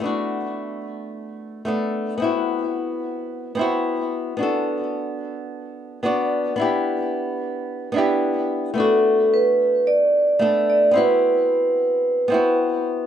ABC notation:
X:1
M:4/4
L:1/8
Q:"Swing 16ths" 1/4=110
K:Bphr
V:1 name="Vibraphone"
z8 | z8 | z8 | z8 |
A2 B2 d3 d | B6 z2 |]
V:2 name="Nylon-string guitar"
[A,B,DF]6 [A,B,DA]2 | [B,CEF]4- [B,CEF] [B,CEF]3 | [B,DFA]6 [B,DFd]2 | [B,DEG]4- [B,DEG] [B,DEG]3 |
[A,B,DF]6 [A,B,DA]2 | [B,CEF]4- [B,CEF] [B,CEF]3 |]